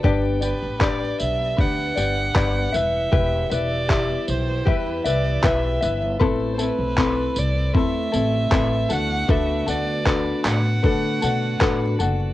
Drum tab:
TB |-x-x-x-x|-x-x-x-x|-x-x-x-x|-x-x-x-x|
CP |--x---x-|--x---x-|--x---x-|--xx--x-|
BD |o-o-o-o-|o-o-o-o-|o-o-o-o-|o-o-o-o-|